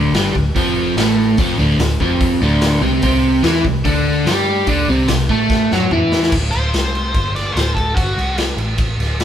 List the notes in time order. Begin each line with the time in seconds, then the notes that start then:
Already playing: D1 D2 D3
0.13 G1 G2 G3, snare, open hi-hat
0.34 D1 D2, kick
0.56 F1 F2 F3, kick, open hi-hat
0.96 A1 A2 A3, snare, open hi-hat
1.37 F1 F2 F3, kick, open hi-hat
1.58 D1 D2 D3
1.78 D1 D2, snare, open hi-hat
2.00 F1 F2 F3, kick
2.20 kick, open hi-hat
2.40 D1 D2 D3
2.61 snare, open hi-hat
2.81 C2 C3 C4
3.02 C2 C3 C4, kick, open hi-hat
3.43 E2 E3 E4, snare, open hi-hat
3.63 C2 C3, kick
3.85 D2 D3 D4, kick, open hi-hat
4.25 G2 G3 G4, snare, open hi-hat
4.67 D2 D3 D4, kick, open hi-hat
4.87 C2 C3 C4
5.08 C2 C3, snare, open hi-hat
5.29 A2 A3 A4, kick
5.50 kick, snare
5.71 F#2 F#3 F#4, snare
5.80 mid tom
5.91 E2 E3 E4, mid tom
6.12 snare
6.23 snare
6.32 D1, kick, crash
6.51 D1 C5, crash
6.74 C2, snare, crash
6.95 crash
7.14 G1, kick, crash
7.36 D5, snare, crash
7.52 D1 C5
7.56 snare, crash
7.75 A4, kick, crash
7.94 G1 F#4, kick, crash
8.17 C2, crash
8.38 snare, crash
8.57 A1, crash
8.78 kick, crash
8.98 D1, snare, crash
9.20 snare, crash